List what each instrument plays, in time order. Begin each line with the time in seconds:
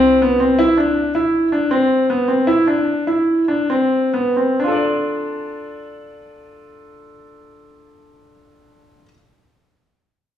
Already playing: cello C2, grand piano C4
0.22 grand piano B3
0.40 grand piano C4
0.59 grand piano E4
0.77 grand piano D4
1.15 grand piano E4
1.52 grand piano D4
1.71 grand piano C4
2.10 grand piano B3
2.28 grand piano C4
2.47 grand piano E4
2.67 grand piano D4
3.07 grand piano E4
3.48 grand piano D4
3.70 grand piano C4
4.14 grand piano B3
4.37 grand piano C4
4.60 grand piano D4
4.64 grand piano F4 A4
4.72 grand piano D5